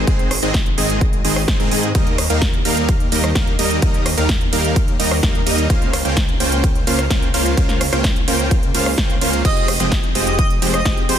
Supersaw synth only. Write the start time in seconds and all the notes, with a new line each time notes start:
0.07 D#3 G#3 C4 G#4 C5
0.43 D#3 G#3 C4 G#4 D#5
0.78 D#3 G#3 C4 G#4 D#5
1.25 D#3 G#3 C4 G#4 D#5
1.48 D#3 G#3 C4 G#4 C5
1.60 D#3 G#3 C4 G#4 A#4
1.72 D#3 G#3 C4 G#4 D#5
1.95 G3 A#3 D#4 A#4 D#5
2.30 G3 A#3 D#4 A#4 F5
2.65 G3 A#3 D#4 A#4 F5
3.12 G3 A#3 D#4 A#4 D#5
3.35 G3 A#3 D#4 A#4 F5
3.59 G3 A#3 D#4 A#4 D#5
3.82 A#3 D#4 A#4
4.18 G3 A#3 D#4 A#4 F5
4.53 G3 A#3 D#4 A#4 F5
4.99 G3 A#3 D#4 A#4 D#5
5.23 G3 A#3 D#4 A#4 F5
5.46 G3 A#3 D#4 A#4 D#5
5.70 C#4 F4 C5 F5
6.05 A#3 C#4 F4 C5 G5
6.40 A#3 C#4 F4 C5 G5
6.87 A#3 C#4 F4 C5 F5
7.11 A#3 C#4 F4 C5 G5
7.34 A#3 C#4 F4 C5 F5
7.58 A#3 C#4 F4 C5 F5
7.93 A#3 C#4 F4 C5 G5
8.28 A#3 C#4 F4 C5 G5
8.75 A#3 C#4 F4 C5 F5
8.98 A#3 C#4 C5 G5
9.21 A#3 C#4 F4 C5 F5
9.45 F3 G#3 C4 G4 C5
9.80 F3 G#3 C4 G4 D#5
10.15 F3 G#3 C4 G4 D#5
10.62 F3 G#3 C4 G4 C5
10.86 F3 G#3 C4 G4 D#5
11.09 F3 G#3 C4 G4 C5